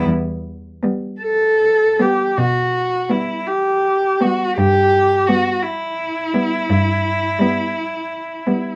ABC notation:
X:1
M:12/8
L:1/8
Q:3/8=55
K:Em
V:1 name="Cello"
z3 A2 G F2 E G2 F | G2 F E8- E |]
V:2 name="Cello"
z2 B, z2 B, z2 B, z2 B, | z2 B, z2 B, z2 B, z2 B, |]
V:3 name="Cello" clef=bass
z2 G, z2 G, z2 G, z2 G, | z2 G, z2 G, z2 G, z2 G, |]
V:4 name="Cello" clef=bass
E,,3 z3 B,,3 z3 | G,,3 z3 G,,3 z3 |]